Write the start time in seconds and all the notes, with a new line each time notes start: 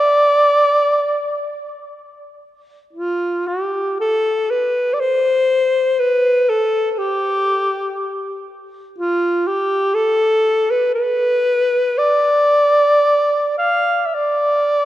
Already playing: D5
2.93 F4
3.47 G4
4.00 A4
4.50 B4
4.93 D5
5.00 C5
5.99 B4
6.49 A4
6.92 A4
6.98 G4
8.98 F4
9.47 G4
9.95 A4
10.71 B4
10.95 B4
11.98 D5
13.58 F5
14.06 E5
14.14 D5